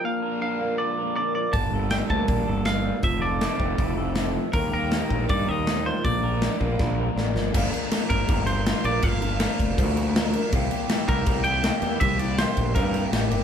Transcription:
<<
  \new Staff \with { instrumentName = "Clean electric guitar" } { \time 4/4 \key g \dorian \tempo 4 = 160 f''4 f''4 d''4 d''8 d''8 | a''4 g''8 a''4. f''4 | e''8 d''2. r8 | bes'8 bes'4. d''8 ees''4 c''8 |
d''2. r4 | r4. bes'4 c''4 d''8 | f''2. r4 | r4. bes'4 g''4. |
e''8 d''8 c''4 bes'4 r4 | }
  \new Staff \with { instrumentName = "Clean electric guitar" } { \time 4/4 \key g \dorian bes,8 bes'8 d'8 bes8 d'8 bes'8 d'8 f8 | g,8 a'8 d'8 bes8 d'8 a'8 d'8 g8 | f8 a'8 e'8 c'8 e'8 a'8 e'8 f8 | ees8 bes'8 ees'8 g8 ees'8 bes'8 ees'8 f8 |
bes,8 bes'8 d'8 bes8 d'8 bes'8 d'8 f8 | <g, d f bes d' bes'>8 <f bes d' bes'>8 <f bes d' bes'>4 <g, d f bes d' bes'>8 <f bes d' bes'>8 <f bes d' bes'>8 <f bes d' bes'>8 | <g, d f bes d' bes'>8 <f bes d' bes'>8 <f bes d' bes'>4 <g, d f bes d' bes'>8 <f bes d' bes'>8 <f bes d' bes'>8 <f bes d' bes'>8 | <c g bes e' g'>8 <bes e' g'>8 <g bes e' g'>4 <c g bes e' g'>8 <bes e' g'>8 <g bes e' g'>8 <bes e' g'>8 |
<c g bes e' g'>8 <bes e' g'>8 <g bes e' g'>4 <c g bes e' g'>8 <bes e' g'>8 <g bes e' g'>8 <bes e' g'>8 | }
  \new Staff \with { instrumentName = "Overdriven electric guitar" } { \time 4/4 \key g \dorian <bes, d f bes d' bes'>1 | <g, d g bes d'>1 | <f c' a'>1 | <ees g bes ees' g'>1 |
<bes, d f bes d' bes'>1 | r1 | r1 | r1 |
r1 | }
  \new Staff \with { instrumentName = "Fingered electric bass" } { \clef bass \time 4/4 \key g \dorian r1 | g,,8 g,,4 d,8 bes,,8 g,,4. | f,,4. f,,8 f,,2 | ees,8 ees,4 bes,,8 g,8 ees,4. |
bes,,4. bes,,8 bes,,4 a,,8 g,,8 | g,,8 r4 g,,8 g,,4. bes,,8 | g,,4. f,,8 d,2 | c,8 r4 c,8 c,4. e,8 |
c,4. bes,,8 g,4 a,,8 g,,8 | }
  \new DrumStaff \with { instrumentName = "Drums" } \drummode { \time 4/4 r4 r4 r4 r4 | <hho bd>4 <hho sn>8 bd8 <hho bd>4 <hho sn>4 | <hho bd>4 <hho sn>8 bd8 <hho bd>4 <hho sn>4 | <hho bd>4 <hho sn>8 bd8 <hho bd>4 <hho sn>4 |
<hho bd>4 <hho sn>8 bd8 <bd sn>4 sn8 sn8 | <cymc bd>8 cymc8 <cymc sn>8 <cymc bd>8 <cymc bd>8 cymc8 <cymc sn>8 cymc8 | <cymc bd>8 cymc8 <cymc sn>8 <cymc bd>8 <cymc bd>8 cymc8 <cymc sn>8 cymc8 | <cymc bd>8 cymc8 <cymc sn>8 <cymc bd>8 <cymc bd>8 cymc8 <cymc sn>8 cymc8 |
<cymc bd>8 cymc8 <cymc sn>8 <cymc bd>8 <cymc bd>8 cymc8 <cymc sn>8 cymc8 | }
>>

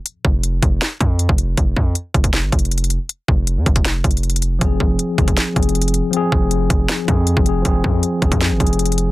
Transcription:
<<
  \new Staff \with { instrumentName = "Tine electric piano" } { \time 4/4 \key f \minor \tempo 4 = 158 r1 | r1 | r1 | <f c' aes'>4. <f c' aes'>4 <f c' aes'>4. |
<f c' aes'>2 r8 <f c' aes'>4 <f c' aes'>8 | <f c' aes'>4. <f c' aes'>4 <f c' aes'>4. | }
  \new Staff \with { instrumentName = "808-style bass" } { \clef bass \time 4/4 \key f \minor r8 f,,4 f,,8 r8 f,8. f,,8. | f,,8 f,8 r8 f,,8. aes,,16 f,,4~ f,,16 r16 | r8 f,,8. f,16 f,,4 f,,4. | f,,8 f,,8 r8 f,,8 r8 f,,4~ f,,16 r16 |
r8 f,,4 f,,8 r8 f,8. f,,8. | f,,8 f,8 r8 f,,16 f,8 g,,16 f,,4. | }
  \new DrumStaff \with { instrumentName = "Drums" } \drummode { \time 4/4 hh8 bd8 hh8 <hh bd>8 <hh sn>8 <hh bd>8 hh16 bd16 hh8 | <hh bd>8 bd8 hh8 <hh bd>16 <hh bd>16 \tuplet 3/2 { <hh sn>16 r16 r16 <hh bd>16 hh16 hh16 hh16 hh16 hh16 hh16 r16 r16 } | hh8 bd8 hh8 <hh bd>16 <hh bd>16 \tuplet 3/2 { <hh sn>16 r16 r16 <hh bd>16 hh16 hh16 hh16 hh16 hh16 hh16 r16 r16 } | <hh bd>8 bd8 hh8 <hh bd>16 <hh bd>16 \tuplet 3/2 { <hh sn>16 r16 r16 <hh bd>16 hh16 hh16 hh16 hh16 hh16 hh16 r16 r16 } |
hh8 bd8 hh8 <hh bd>8 <hh sn>8 <hh bd>8 hh16 bd16 hh8 | <hh bd>8 bd8 hh8 <hh bd>16 <hh bd>16 \tuplet 3/2 { <hh sn>16 r16 r16 <hh bd>16 hh16 hh16 hh16 hh16 hh16 hh16 r16 r16 } | }
>>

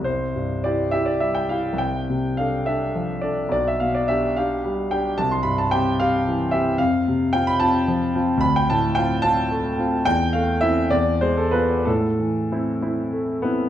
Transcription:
\new Staff \with { instrumentName = "Grand piano" } { \time 6/8 \key c \major \tempo 4. = 71 << { c''4 d''8 e''16 d''16 e''16 g''16 f''8 | g''4 f''8 e''4 d''8 | d''16 e''16 f''16 d''16 e''8 f''4 g''8 | a''16 c'''16 b''16 a''16 g''8 f''4 e''8 |
\key a \minor f''4 g''16 b''16 a''4. | b''16 g''16 a''8 g''8 a''4. | g''8 f''8 e''8 d''8 c''16 a'16 b'8 | a'2~ a'8 b8 | } \\ { c,8 g,8 <e' g'>8 <e' g'>8 g8 <e' g'>8 | c,8 c8 <d' a'>8 <d' a'>8 f8 <d' a'>8 | b,,8 b,8 <d' g'>8 <d' g'>8 g8 <d' g'>8 | c,8 g,8 <c' g'>8 <c' g'>8 e8 <c' g'>8 |
f,8 c8 <c' f'>8 <c' f'>8 f8 <c' f'>8 | d,8 a,8 <c' f'>8 <c' f'>8 a8 <c' f'>8 | e,8 a8 <c' e'>8 e,8 gis8 <b f'>8 | a,8 e8 <c' e'>8 <c' e'>8 a8 <c' e'>8 | } >> }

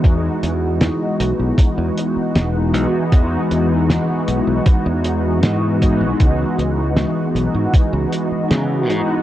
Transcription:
<<
  \new Staff \with { instrumentName = "Analog polysynth" } { \time 4/4 \key e \major \tempo 4 = 78 <e gis b dis' fis'>2.~ <e gis b dis' fis'>8 <e gis b dis' fis'>8 | <e gis b dis' fis'>2.~ <e gis b dis' fis'>8 <e gis b dis' fis'>8 | <e gis b dis' fis'>2.~ <e gis b dis' fis'>8 <e gis b dis' fis'>8 | }
  \new Staff \with { instrumentName = "Fingered electric bass" } { \clef bass \time 4/4 \key e \major e,16 r16 e,8 r8 b,,16 b,,16 r16 e,16 r8 e,,8 b,,16 r16 | e,16 r16 e,8 r8 b,,16 b,,16 r16 e,8. gis,8. b,,16 | cis,16 r16 cis,8 r8 b,,16 gis,16 r16 cis,16 r8 cis8 gis,16 r16 | }
  \new DrumStaff \with { instrumentName = "Drums" } \drummode { \time 4/4 <hh bd>8 hh8 <hh sn>8 hh8 <hh bd>8 hh8 <hh sn>8 hh8 | <hh bd>8 hh8 <hh sn>8 hh8 <hh bd>8 hh8 <hh sn>8 <hh bd>8 | <hh bd>8 hh8 <hh sn>8 hh8 <hh bd>8 hh8 <hh sn>8 hh8 | }
>>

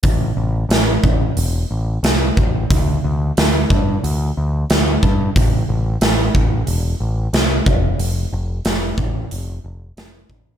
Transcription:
<<
  \new Staff \with { instrumentName = "Picked electric bass" } { \clef bass \time 4/4 \key f \lydian \tempo 4 = 91 a,,8 a,,8 a,,8 a,,8 e,,8 a,,8 c,8 a,,8 | d,8 d,8 d,8 g,8 d,8 d,8 d,8 g,8 | a,,8 a,,8 a,,8 a,,8 e,,8 a,,8 c,8 f,,8 | f,,8 f,,8 f,,8 a,,8 f,,8 f,,8 f,,8 a,,8 | }
  \new DrumStaff \with { instrumentName = "Drums" } \drummode { \time 4/4 <hho bd>4 <hho sn>8 bd8 hho4 <hho sn>8 bd8 | <hho bd>4 <hho sn>8 bd8 hho4 <hho sn>8 bd8 | <hho bd>4 <hho sn>8 bd8 hho4 <hho sn>8 bd8 | hho4 <hho sn>8 bd8 hho4 <hho sn>8 bd8 | }
>>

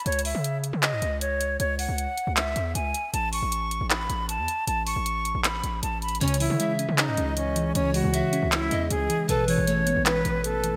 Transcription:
<<
  \new Staff \with { instrumentName = "Flute" } { \time 4/4 \key cis \minor \tempo 4 = 156 cis''8 e''4. dis''4 cis''4 | cis''8 fis''4. e''4 gis''4 | a''8 cis'''4. b''4 a''4 | a''8 cis'''4. b''4 a''8 b''8 |
cis'8 e'4. dis'4 cis'4 | cis'8 fis'4. e'4 gis'4 | a'8 cis''4. b'4 a'4 | }
  \new Staff \with { instrumentName = "Pan flute" } { \time 4/4 \key cis \minor r1 | r1 | r1 | r1 |
cis''4 e''4 dis''2 | cis''4 e''4. dis''8 r4 | b'4 cis''4 b'2 | }
  \new Staff \with { instrumentName = "Ambient pad" } { \time 4/4 \key cis \minor << { r1 | r1 | r1 | r1 |
<gis cis' gis'>1~ | <gis cis' gis'>1 | <a b a'>1 | } \\ { r1 | r1 | r1 | r1 |
e1~ | e1~ | e1 | } >> }
  \new Staff \with { instrumentName = "Synth keys" } { \clef bass \time 4/4 \key cis \minor r1 | r1 | r1 | r1 |
cis8 e8 gis8 cis'8 cis''8 cis'4 e8 | cis8 e8 gis8 cis'8 cis''8 cis'4 e8 | b,8 e8 a8 b8 b'8 b4 e8 | }
  \new Staff \with { instrumentName = "808-style bass" } { \clef bass \time 4/4 \key cis \minor cis,8. cis4 cis8 gis,16 cis,4. | cis,8. cis,8 r8 cis,8. e,8 cis,8 r8 | a,,8. a,,4 a,,8. a,,8. e,16 r8 | a,,8. a,,4 a,,8. a,,8 a,,4 |
cis,8. cis4 cis8 gis,16 cis,4. | cis,8. cis,8 r8 cis,8. e,8 cis,8 r8 | a,,8. a,,4 a,,8. a,,4~ a,,16 e,16 | }
  \new DrumStaff \with { instrumentName = "Drums" } \drummode { \time 4/4 \tuplet 3/2 { hh16 hh16 hh16 hho16 r16 r16 } hh8 hh8 <hc hh>8 hh8 hh8 hh8 | hh8 hho8 hh8 hh8 <hc hh>8 hh8 hh8 hh8 | hh8 hho8 hh8 hh8 <hc hh>8 hh8 hh8 hh8 | hh8 hho8 hh8 hh8 <hc hh>8 hh8 \tuplet 3/2 { hh16 r16 r16 hh16 hh16 hh16 } |
\tuplet 3/2 { hh16 hh16 hh16 hho16 r16 r16 } hh8 hh8 <hc hh>8 hh8 hh8 hh8 | hh8 hho8 hh8 hh8 <hc hh>8 hh8 hh8 hh8 | hh8 hho8 hh8 hh8 <hc hh>8 hh8 hh8 hh8 | }
>>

